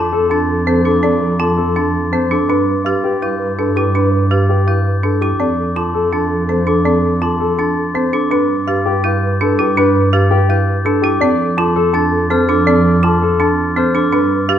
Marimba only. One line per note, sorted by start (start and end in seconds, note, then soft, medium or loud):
0.00 0.18 F4 medium
0.31 0.55 D4 medium
0.67 0.91 C4 medium
0.85 1.09 D4 medium
1.03 1.27 C4 medium
1.40 1.64 F4 medium
1.76 2.00 D4 medium
2.13 2.36 C4 medium
2.31 2.48 D4 medium
2.50 2.73 D4 medium
2.86 3.09 G4 medium
3.23 3.46 E4 medium
3.59 3.82 D4 medium
3.77 4.00 E4 medium
3.95 4.18 D4 medium
4.31 4.55 G4 medium
4.68 4.91 E4 medium
5.03 5.27 D4 medium
5.22 5.46 E4 medium
5.40 5.64 C4 medium
5.76 6.00 F4 medium
6.13 6.36 D4 medium
6.49 6.73 C4 medium
6.67 6.91 D4 medium
6.85 7.09 C4 medium
7.22 7.46 F4 medium
7.59 7.82 D4 medium
7.95 8.18 C4 medium
8.13 8.30 D4 medium
8.32 8.55 D4 medium
8.68 8.91 G4 medium
9.04 9.27 E4 medium
9.41 9.64 D4 medium
9.59 9.82 E4 medium
9.77 10.00 D4 medium
10.13 10.37 G4 medium
10.50 10.73 E4 medium
10.86 11.09 D4 medium
11.04 11.27 E4 medium
11.21 11.45 C4 medium
11.58 11.82 F4 medium
11.94 12.18 D4 medium
12.30 12.54 C4 medium
12.49 12.73 D4 medium
12.67 12.91 C4 medium
13.03 13.27 F4 medium
13.40 13.64 D4 medium
13.76 14.00 C4 medium
13.95 14.11 D4 medium
14.12 14.36 D4 medium
14.49 14.59 G4 medium